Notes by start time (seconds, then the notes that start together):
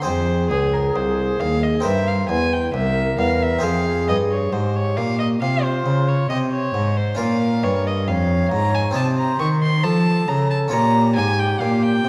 0.02 C4 G#4 C5
0.06 F2 G#4
0.50 C#2 G#4
0.74 A#4
0.95 C2 C5
1.40 D#2 F5
1.63 D#5
1.80 C4 A#4 C5
1.85 G2 C5 E5
2.08 F5
2.29 E2 G#5
2.53 G5
2.74 C2 A#4 E5
3.19 E2 F5
3.43 E5
3.58 C4 G#4 C5
3.63 F2 G#4 F5
4.08 G2 D#5
4.31 C#5
4.53 G#2 G4 C5
4.76 C#5
4.97 A#2 F5
5.20 D#5
5.41 C3 F4 F5
5.63 C5
5.86 C#3
6.08 C#5
6.30 C3 C5 D#5
6.52 C#5
6.74 G#2
6.97 C5
7.15 C#4 F4 A#4
7.19 A#2 A#4 F5
7.63 G2 C#5
7.87 D#5
8.08 F2 C#5 F5
8.52 G#2 A#5
8.75 G#5
8.91 C4 F4 D#5
8.95 C3 C5 A5
9.19 A#5
9.40 D#3 C#6
9.62 C6
9.84 F3 A4 A5
10.28 C#3 A#5
10.51 A5
10.68 C#4 F4 C#5
10.72 A#2 G4 A#5
11.16 G#2 G#5
11.39 G5
11.60 A#2 F5
11.83 G5
12.05 C3